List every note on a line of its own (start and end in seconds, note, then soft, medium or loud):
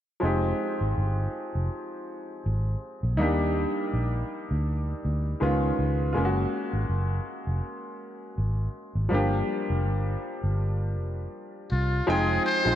0.20 0.52 F1 medium
0.20 3.13 F3 medium
0.20 3.14 G#3 medium
0.20 3.15 C4 medium
0.24 3.15 D#4 medium
0.24 3.16 G4 medium
0.81 0.93 G#1 medium
0.98 1.26 G1 medium
1.55 1.68 F1 medium
2.46 2.74 G#1 medium
3.03 3.19 A#1 medium
3.17 3.64 D#2 medium
3.17 5.37 G3 medium
3.17 5.37 A#3 medium
3.17 5.38 D4 medium
3.17 5.36 D#4 medium
3.23 5.39 G4 medium
3.94 4.22 A#1 medium
4.51 4.93 D2 medium
5.05 5.34 D2 medium
5.40 5.70 C#2 medium
5.40 6.14 D#3 medium
5.40 6.13 G#3 medium
5.40 6.15 B3 medium
5.40 6.16 C#4 medium
5.40 6.11 F4 medium
5.79 6.17 C#2 medium
6.13 6.44 F#1 medium
6.13 9.07 G#3 medium
6.13 9.07 A#3 medium
6.13 6.17 F4 medium
6.17 9.08 C#4 medium
6.17 6.24 F4 medium
6.25 9.12 F#4 medium
6.73 6.86 G#1 medium
6.89 7.18 F#1 medium
7.47 7.60 F1 medium
8.38 8.67 G#1 medium
8.95 9.08 G#1 medium
9.09 9.41 G1 medium
9.09 12.02 F3 medium
9.09 12.03 G3 medium
9.09 12.04 A#3 medium
9.13 12.04 D4 medium
9.13 12.05 G4 medium
9.70 9.86 F1 medium
9.86 10.15 G1 medium
10.44 10.97 G1 medium
10.97 11.26 F1 medium
11.71 12.00 C2 medium
11.71 12.09 F4 medium
12.07 12.37 F1 medium
12.07 12.55 F3 medium
12.07 12.55 G#3 medium
12.07 12.56 C4 medium
12.07 12.56 D#4 medium
12.07 12.45 G#4 medium
12.07 12.56 G5 medium
12.46 12.75 C5 medium
12.65 12.75 A#1 medium
12.65 12.75 F3 medium
12.65 12.75 G#3 medium
12.65 12.75 C4 medium
12.65 12.75 D#4 medium
12.65 12.75 F4 medium